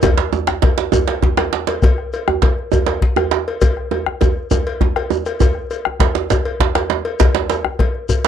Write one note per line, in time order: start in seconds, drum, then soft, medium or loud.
0.02 bombo rim soft
0.02 bombo low loud
0.02 cowbell medium
0.02 djembe slap medium
0.02 djembe tone loud
0.02 djembe tone medium
0.02 djembe bass medium
0.02 shekere medium
0.18 bombo rim soft
0.18 djembe slap medium
0.33 djembe tone medium
0.33 shekere soft
0.47 bombo rim medium
0.47 djembe slap medium
0.47 djembe slap soft
0.47 djembe tone medium
0.62 bombo rim soft
0.62 bombo low loud
0.62 cowbell soft
0.62 djembe slap medium
0.78 djembe slap medium
0.92 cowbell soft
0.92 djembe tone loud
0.92 djembe tone medium
0.92 djembe bass medium
0.92 shekere medium
1.08 cowbell soft
1.08 djembe slap medium
1.08 djembe slap soft
1.22 bombo low loud
1.22 djembe slap medium
1.22 djembe tone medium
1.37 bombo rim medium
1.37 cowbell soft
1.37 djembe slap medium
1.37 djembe tone medium
1.53 djembe slap medium
1.67 cowbell soft
1.67 djembe slap medium
1.82 bombo rim soft
1.82 bombo low loud
1.82 cowbell medium
1.82 djembe slap medium
1.82 djembe tone medium
1.82 djembe bass medium
1.82 shekere medium
1.98 bombo rim soft
2.13 cowbell medium
2.13 shekere soft
2.28 bombo rim medium
2.28 djembe slap soft
2.28 djembe tone medium
2.42 bombo rim soft
2.42 bombo low loud
2.42 cowbell medium
2.42 djembe slap medium
2.58 djembe slap soft
2.72 cowbell soft
2.72 djembe tone medium
2.72 djembe bass medium
2.72 shekere medium
2.86 cowbell soft
2.86 djembe slap medium
3.02 bombo low medium
3.02 djembe slap medium
3.16 bombo rim medium
3.16 cowbell soft
3.16 djembe tone medium
3.31 djembe slap medium
3.48 cowbell soft
3.62 bombo rim soft
3.62 bombo low medium
3.62 cowbell medium
3.62 djembe slap medium
3.62 djembe tone medium
3.62 djembe bass medium
3.62 shekere medium
3.77 bombo rim soft
3.91 bombo rim soft
3.91 cowbell soft
3.91 djembe tone medium
4.06 bombo rim medium
4.06 djembe tone medium
4.21 bombo rim soft
4.21 bombo low loud
4.21 cowbell medium
4.21 djembe slap medium
4.21 djembe tone medium
4.21 shekere soft
4.37 djembe slap soft
4.51 bombo rim soft
4.51 cowbell soft
4.51 djembe slap soft
4.51 djembe tone medium
4.51 djembe bass medium
4.51 shekere medium
4.67 cowbell soft
4.81 bombo rim soft
4.81 bombo low medium
4.81 djembe slap medium
4.81 djembe tone medium
4.96 bombo rim medium
4.96 cowbell soft
4.96 djembe tone soft
5.10 djembe tone medium
5.10 shekere soft
5.25 bombo rim soft
5.25 cowbell medium
5.25 shekere soft
5.40 bombo rim soft
5.40 bombo low medium
5.40 cowbell medium
5.40 djembe slap medium
5.40 djembe tone medium
5.40 djembe bass medium
5.40 shekere medium
5.55 bombo rim soft
5.71 cowbell soft
5.71 shekere soft
5.85 bombo rim medium
5.85 djembe slap soft
5.85 djembe tone medium
6.00 bombo rim soft
6.00 bombo low medium
6.00 cowbell medium
6.00 djembe slap medium
6.15 djembe slap medium
6.30 cowbell soft
6.30 djembe slap medium
6.30 djembe tone medium
6.30 djembe bass medium
6.30 shekere medium
6.45 cowbell soft
6.45 djembe slap soft
6.60 bombo low medium
6.60 djembe slap medium
6.75 bombo rim medium
6.75 cowbell soft
6.75 djembe slap medium
6.75 djembe tone medium
6.90 djembe slap medium
7.05 cowbell medium
7.20 bombo rim soft
7.20 bombo low medium
7.20 cowbell medium
7.20 djembe slap medium
7.20 djembe tone medium
7.20 djembe bass medium
7.20 shekere medium
7.35 bombo rim soft
7.35 djembe slap medium
7.50 cowbell soft
7.50 djembe slap medium
7.50 shekere soft
7.64 bombo rim medium
7.64 djembe slap soft
7.64 djembe tone medium
7.79 bombo rim soft
7.79 bombo low medium
7.79 cowbell medium
7.79 djembe slap medium
7.95 djembe slap soft
8.09 cowbell soft
8.09 djembe tone medium
8.09 djembe bass medium
8.09 shekere medium
8.25 cowbell soft
8.25 djembe slap medium